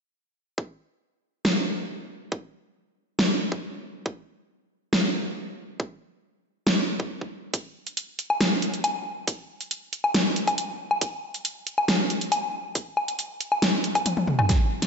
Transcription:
0.58 kick
1.45 snare
2.32 kick
3.19 snare
3.52 kick
4.06 kick
4.93 snare
5.80 kick
6.67 snare
7.00 kick
7.21 kick
7.54 kick, closed hi-hat
7.87 closed hi-hat
7.97 closed hi-hat
8.19 closed hi-hat
8.30 low woodblock
8.41 snare, closed hi-hat
8.62 closed hi-hat
8.74 closed hi-hat
8.84 closed hi-hat, low woodblock
9.27 kick, closed hi-hat
9.61 closed hi-hat
9.71 closed hi-hat
9.93 closed hi-hat
10.04 low woodblock
10.14 snare, closed hi-hat
10.36 closed hi-hat
10.47 kick, closed hi-hat, low woodblock
10.58 closed hi-hat
10.91 low woodblock
11.01 kick, closed hi-hat
11.34 closed hi-hat
11.45 closed hi-hat
11.67 closed hi-hat
11.78 low woodblock
11.88 snare, closed hi-hat
12.10 closed hi-hat
12.21 closed hi-hat
12.32 closed hi-hat, low woodblock
12.75 kick, closed hi-hat
12.97 low woodblock
13.08 closed hi-hat
13.19 closed hi-hat
13.41 closed hi-hat
13.52 low woodblock
13.62 snare, closed hi-hat
13.84 closed hi-hat
13.95 kick, closed hi-hat, low woodblock
14.06 closed hi-hat, high tom
14.17 high tom
14.27 mid tom
14.39 mid tom, low woodblock
14.49 kick, snare, closed hi-hat
14.82 snare, closed hi-hat

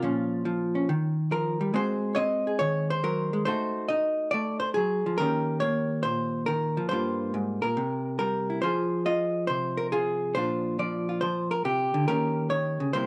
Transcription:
Already playing: F4
0.02 A#2 F3 C#4
0.45 F3
0.75 C#4
0.89 D#3
1.31 F3 A#4
1.61 G3
1.74 G#3 C4 F#4 G#4 C5
2.15 C4 C#5 D#5
2.47 G#4
2.59 D#3 C#5
2.90 C5
3.04 F#3 A#4
3.33 G#3
3.45 A3 D#4 F#4 C5
3.88 D#4 D#5
4.31 A3 D5
4.60 C5
4.74 F#3 G#4
5.06 F3
5.18 D#3 A#3 C#4 G4 A#4
5.60 A#3 C#5
6.03 A#2 C5
6.46 D#3 A#4
6.77 F3
6.89 G2 G3 C5
6.93 A#3 F4
7.34 G#2
7.62 A#2 A#4
7.77 C3
8.19 G3 A#4
8.50 E4
8.62 F3 F4 G#4 C5
9.06 F4 D#5
9.47 C3 C5
9.77 A#4
9.92 F4 G#4
10.35 A#2 F3 D4 F4 C5
10.79 F3 D5
11.09 F4
11.21 F3 C5
11.51 A#4
11.65 C3 G4
11.94 D3
12.08 D#3 A#3 C#4 G4 A#4
12.50 D#3 C#5
12.80 C#3
12.93 C3 G3 A#3 E4 C5

